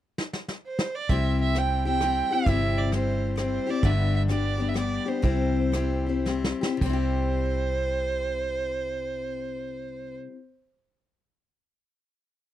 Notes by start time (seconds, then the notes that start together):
0.18 snare
0.33 snare
0.48 snare
0.67 C5
0.79 snare
0.95 D5
1.09 C2 C3 G3 C4 E4 G4 E5, kick, closed hi-hat
1.41 E5
1.55 G3 C4 E4 G4 G5, cross-stick, closed hi-hat
1.85 C4 E4 G4 G5
2.01 G3 C4 E4 G4, cross-stick, closed hi-hat
2.31 C4 E4 G4 E5
2.46 G1 C3 G3 C4 E4 G4, kick, closed hi-hat
2.78 D5
2.92 G3 C4 E4 G4 C5, cross-stick, closed hi-hat
3.36 G3 C4 E4 G4, cross-stick, closed hi-hat
3.40 C5
3.67 C4 E4 G4
3.71 D5
3.83 G1 G2 D3 G3 B3 D4 G4 E5, kick, closed hi-hat
4.16 E5
4.28 G3 B3 D4 G4 D5, cross-stick, closed hi-hat
4.58 G3 B3 D4 G4
4.69 E5
4.74 G3 B3 D4 G4, cross-stick, closed hi-hat
4.79 D5
5.06 G3 B3 D4 G4 C5
5.22 C2 C3 G3 C4 E4 G4, kick, closed hi-hat
5.72 G3 C4 E4 G4, cross-stick, closed hi-hat
6.06 C4 E4 G4
6.25 G3 C4 E4 G4, snare
6.44 snare
6.61 C4 E4 G4, snare
6.77 C3
6.81 C2 G3 C5, kick, splash
6.86 C4 E4
6.93 G4